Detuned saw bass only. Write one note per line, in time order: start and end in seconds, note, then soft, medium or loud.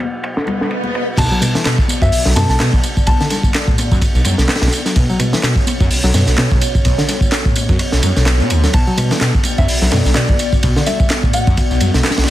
1.18 1.27 B1 loud
2.02 2.09 F#2 medium
2.13 2.23 B1 soft
2.26 2.33 B1 medium
2.36 2.45 F#2 medium
2.49 2.56 B1 medium
2.73 2.80 B1 medium
3.07 3.16 B1 loud
3.92 3.98 F#2 medium
4.15 4.22 B1 medium
4.25 4.34 F#2 medium
4.38 4.45 B1 medium
4.62 4.69 B1 medium
4.96 5.05 B1 loud
5.80 5.87 F#2 medium
5.91 6.01 B1 soft
6.04 6.11 B1 medium
6.14 6.23 F#2 medium
6.28 6.35 B1 medium
6.52 6.58 B1 medium
6.85 6.94 B1 loud
7.69 7.76 F#2 medium
7.93 8.00 B1 medium
8.03 8.12 F#2 medium
8.17 8.42 B1 medium
8.40 8.52 B2 loud
8.50 8.67 D2 loud
8.74 8.83 B1 loud
9.59 9.65 F#2 medium
9.68 9.79 B1 soft
9.82 9.89 B1 medium
9.92 10.01 F#2 medium
10.05 10.12 B1 medium
10.29 10.36 B1 medium
10.64 10.72 B1 loud
11.47 11.54 F#2 medium
11.71 11.78 B1 medium
11.81 11.90 F#2 medium
11.95 12.01 B1 medium
12.18 12.25 B1 medium